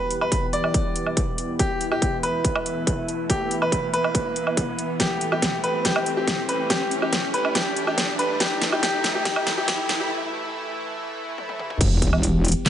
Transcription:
0.00 11.77 E3 medium
0.00 4.96 B3 medium
0.00 1.58 G4 medium
0.00 0.13 B4 loud
0.00 riser medium
0.11 closed hi-hat medium
0.21 0.45 B4 medium
0.21 low woodblock medium
0.32 kick medium
0.32 closed hi-hat medium
0.53 1.51 D5 loud
0.53 closed hi-hat soft
0.64 low woodblock medium
0.74 kick loud
0.74 closed hi-hat medium
0.96 closed hi-hat medium
1.06 low woodblock soft
1.17 kick loud
1.17 closed hi-hat medium
1.38 closed hi-hat medium
1.59 4.99 E4 medium
1.59 1.84 G4 medium
1.59 kick medium
1.59 closed hi-hat medium
1.81 closed hi-hat soft
1.91 2.16 G4 medium
1.91 low woodblock medium
2.02 kick medium
2.02 closed hi-hat medium
2.23 3.21 B4 medium
2.23 closed hi-hat soft
2.45 kick medium
2.45 closed hi-hat medium
2.55 low woodblock medium
2.66 closed hi-hat medium
2.87 kick loud
2.87 closed hi-hat medium
3.08 closed hi-hat soft
3.30 3.54 G4 medium
3.30 kick medium
3.30 closed hi-hat medium
3.51 closed hi-hat soft
3.62 3.86 B4 medium
3.62 low woodblock medium
3.72 kick medium
3.72 closed hi-hat medium
3.93 4.92 B4 medium
3.93 closed hi-hat soft
4.04 low woodblock medium
4.15 kick medium
4.15 closed hi-hat medium
4.36 closed hi-hat medium
4.47 low woodblock medium
4.57 kick loud
4.57 closed hi-hat medium
4.79 closed hi-hat soft
5.00 11.77 A3 medium
5.00 8.39 G4 medium
5.00 5.24 G4 medium
5.00 kick medium
5.00 snare soft
5.00 closed hi-hat medium
5.21 closed hi-hat soft
5.32 5.56 G4 medium
5.32 low woodblock medium
5.42 kick medium
5.42 snare soft
5.42 closed hi-hat medium
5.64 5.83 B4 medium
5.64 closed hi-hat soft
5.85 6.09 G4 medium
5.85 kick loud
5.85 snare medium
5.85 closed hi-hat medium
5.96 low woodblock medium
6.06 closed hi-hat medium
6.17 6.41 G4 medium
6.27 kick loud
6.27 snare medium
6.27 closed hi-hat medium
6.49 6.68 B4 medium
6.49 closed hi-hat medium
6.70 6.94 G4 medium
6.70 kick loud
6.70 snare medium
6.70 closed hi-hat medium
6.91 closed hi-hat soft
7.02 7.26 G4 medium
7.02 low woodblock medium
7.13 kick medium
7.13 snare medium
7.13 closed hi-hat medium
7.34 7.54 B4 medium
7.34 closed hi-hat soft
7.45 low woodblock medium
7.55 7.79 G4 medium
7.55 kick medium
7.55 snare medium
7.55 closed hi-hat medium
7.76 closed hi-hat medium
7.87 8.11 G4 medium
7.87 low woodblock medium
7.98 kick loud
7.98 snare medium
7.98 closed hi-hat medium
8.19 8.39 B4 medium
8.19 closed hi-hat soft
8.40 11.79 E4 medium
8.40 8.64 G4 medium
8.40 kick loud
8.40 snare medium
8.40 closed hi-hat medium
8.62 snare medium
8.62 closed hi-hat medium
8.72 8.81 G4 loud
8.72 low woodblock medium
8.83 9.07 G4 loud
8.83 kick medium
8.83 snare medium
8.83 closed hi-hat medium
9.04 snare medium
9.04 closed hi-hat medium
9.15 9.24 G4 medium
9.25 9.49 G4 loud
9.25 kick loud
9.25 snare medium
9.25 closed hi-hat medium
9.36 low woodblock medium
9.47 snare medium
9.47 closed hi-hat medium
9.57 9.66 G4 loud
9.68 9.92 G4 loud
9.68 kick loud
9.68 snare medium
9.68 closed hi-hat medium
9.89 snare medium
9.89 closed hi-hat medium
10.00 10.09 G4 medium
11.38 high tom medium
11.49 high tom medium
11.59 mid tom medium
11.70 mid tom medium
11.81 12.11 E1 loud
11.81 12.69 E3 medium
11.81 12.69 B3 medium
11.81 12.69 G4 medium
11.81 kick loud
11.81 closed hi-hat medium
11.81 crash loud
11.81 sub drop medium
12.02 kick medium
12.02 closed hi-hat medium
12.13 12.54 E1 loud
12.13 low woodblock medium
12.23 closed hi-hat medium
12.45 closed hi-hat medium
12.48 closed hi-hat medium
12.52 closed hi-hat medium
12.66 snare loud
12.66 clap loud
12.66 closed hi-hat medium

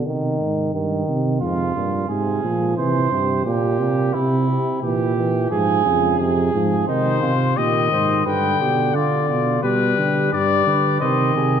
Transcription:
0.06 0.39 C3 medium
0.06 0.72 D#3 medium
0.40 0.76 G#2 medium
0.74 1.08 G2 medium
0.74 1.40 D#3 medium
1.08 1.43 C3 medium
1.41 1.75 F2 medium
1.41 1.75 G#2 medium
1.41 2.05 F4 medium
1.76 2.09 G2 medium
1.76 2.08 A#2 medium
2.09 2.43 G#2 medium
2.09 2.44 C3 medium
2.09 2.76 G#4 medium
2.43 2.77 A#2 medium
2.43 2.79 F3 medium
2.77 3.11 C3 medium
2.77 3.11 E3 medium
2.77 3.45 C5 loud
3.11 3.45 G2 medium
3.11 3.45 C3 medium
3.45 3.80 A#2 medium
3.45 3.81 A#2 medium
3.45 4.15 G4 medium
3.80 4.16 A#2 medium
3.80 4.14 C3 medium
4.13 4.48 C3 medium
4.13 4.58 C3 medium
4.13 4.81 E4 loud
4.49 4.82 C3 medium
4.82 5.47 A#2 medium
4.82 5.16 E3 medium
4.82 5.49 G4 medium
5.17 5.50 E3 medium
5.51 5.85 G#2 medium
5.51 5.84 F3 medium
5.51 6.18 G#4 loud
5.85 6.19 F2 medium
5.85 6.21 C#3 medium
6.19 6.54 F2 medium
6.19 6.53 C3 medium
6.19 6.86 G#4 loud
6.54 6.88 G#2 medium
6.54 6.88 F3 medium
6.87 7.22 C3 medium
6.87 7.32 D#3 medium
6.87 7.21 D#4 medium
6.87 7.58 C5 loud
7.22 7.56 C3 medium
7.22 7.56 F4 medium
7.57 7.91 A#2 medium
7.57 8.22 D#3 medium
7.57 7.91 G4 medium
7.57 8.26 D#5 loud
7.91 8.25 G#2 medium
7.91 8.24 C5 medium
8.25 8.59 G2 medium
8.25 9.61 D3 medium
8.25 8.59 B4 medium
8.25 8.96 G5 loud
8.60 8.96 B2 medium
8.60 8.94 G4 medium
8.95 9.28 D3 medium
8.95 9.28 F4 medium
8.95 9.62 D5 medium
9.29 9.63 B2 medium
9.29 9.65 F4 medium
9.63 9.97 B2 medium
9.63 10.31 G3 medium
9.63 9.98 G4 medium
9.63 10.31 B4 medium
9.98 10.32 D3 medium
9.98 10.35 G4 medium
10.32 10.66 G2 medium
10.32 11.00 G3 medium
10.32 10.66 B4 medium
10.32 11.00 D5 loud
10.67 11.00 D3 medium
10.67 11.03 B4 medium
11.00 11.35 C3 medium
11.00 11.60 D#3 medium
11.00 11.36 C5 medium
11.00 11.60 D#5 medium
11.36 11.60 C3 medium
11.36 11.60 G#4 medium

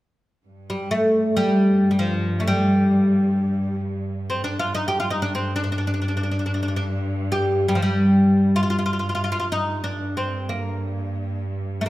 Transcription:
0.46 4.96 G2 medium
0.70 0.91 G3 medium
0.91 1.37 A3 medium
1.37 1.90 G3 medium
1.91 1.98 G3 soft
1.99 2.42 F3 medium
2.40 2.47 A3 medium
2.47 3.80 G3 medium
4.30 4.44 C4 medium
4.44 4.59 D4 medium
4.59 4.74 F4 medium
4.75 4.87 D#4 medium
4.88 4.99 G4 medium
4.98 9.50 G2 medium
4.98 5.10 F4 medium
5.10 5.22 D#4 medium
5.22 5.34 D4 medium
5.35 5.55 C4 medium
5.56 5.62 D4 medium
5.64 5.71 D4 soft
5.72 5.77 D4 soft
5.78 5.86 D4 soft
5.87 5.93 D4 medium
5.94 6.00 D4 soft
6.02 6.07 D4 soft
6.08 6.16 D4 soft
6.17 6.22 D4 soft
6.23 6.30 D4 soft
6.31 6.38 D4 soft
6.39 6.45 D4 soft
6.46 6.53 D4 soft
6.54 6.61 D4 soft
6.63 6.67 D4 soft
6.68 6.75 D4 soft
6.76 6.84 D4 medium
7.32 7.71 G4 medium
7.68 7.76 G3 medium
7.75 7.82 F3 medium
7.82 8.57 G3 medium
8.56 8.62 F4 medium
8.63 8.69 F4 medium
8.70 8.77 F4 medium
8.79 8.85 F4 medium
8.86 8.92 F4 medium
8.93 8.98 F4 soft
8.99 9.08 F4 medium
9.09 9.14 F4 soft
9.15 9.23 F4 medium
9.24 9.31 F4 medium
9.32 9.38 F4 medium
9.40 9.46 F4 medium
9.51 11.89 G2 medium
9.51 9.82 D#4 medium
9.84 10.17 D4 medium
10.17 10.50 C4 medium
10.49 11.43 A#3 medium
11.81 11.85 A3 medium
11.86 11.89 A#3 medium

